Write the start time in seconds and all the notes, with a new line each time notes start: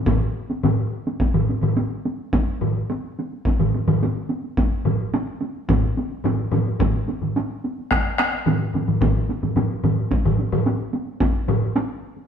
0.06 taiko, taiko low-mid, taiko mid, taiko high
0.50 taiko high
0.63 taiko low-mid, taiko mid, taiko high
1.07 taiko high
1.20 taiko, taiko high
1.34 taiko low-mid, taiko mid, taiko high
1.49 taiko high
1.62 taiko low-mid, taiko mid, taiko high
1.77 taiko high
1.91 taiko high
2.05 taiko high
2.19 taiko high
2.33 taiko, taiko high
2.47 taiko high
2.61 taiko low-mid, taiko mid
2.90 taiko high
3.05 taiko high
3.19 taiko high
3.33 taiko high
3.45 taiko, taiko high
3.60 taiko low-mid, taiko mid, taiko high
3.75 taiko high
3.88 taiko low-mid, taiko mid, taiko high
4.03 taiko high
4.16 taiko high
4.30 taiko high
4.44 taiko high
4.57 taiko, taiko high
4.72 taiko high
4.85 taiko low-mid, taiko mid, taiko high
5.14 taiko high
5.28 taiko high
5.42 taiko high
5.57 taiko high
5.69 taiko, taiko low-mid, taiko mid, taiko high
5.84 taiko high
5.97 taiko high
6.11 taiko high
6.24 taiko low-mid, taiko mid, taiko high
6.39 taiko high
6.52 taiko low-mid, taiko mid, taiko high
6.67 taiko high
6.79 taiko, taiko low-mid, taiko mid, taiko high
6.95 taiko high
7.08 taiko high
7.22 taiko low-mid, taiko mid
7.36 taiko high
7.50 taiko high
7.64 taiko high
7.78 taiko high
7.91 taiko rim, taiko, taiko high
8.06 taiko high
8.18 taiko rim, taiko high
8.33 taiko high
8.46 taiko low-mid, taiko mid, taiko high
8.74 taiko low-mid, taiko mid, taiko high
8.88 taiko low-mid, taiko mid, taiko high
9.01 taiko, taiko low-mid, taiko mid, taiko high
9.16 taiko high
9.29 taiko high
9.43 taiko low-mid, taiko mid, taiko high
9.56 taiko low-mid, taiko mid, taiko high
9.70 taiko high
9.84 taiko low-mid, taiko mid, taiko high
9.98 taiko high
10.11 taiko, taiko high
10.25 taiko low-mid, taiko mid, taiko high
10.39 taiko high
10.52 taiko low-mid, taiko mid, taiko high
10.66 taiko high
10.80 taiko high
10.94 taiko high
11.07 taiko high
11.20 taiko, taiko high
11.34 taiko high
11.48 taiko low-mid, taiko mid, taiko high
11.76 taiko high
11.89 taiko high
12.17 taiko high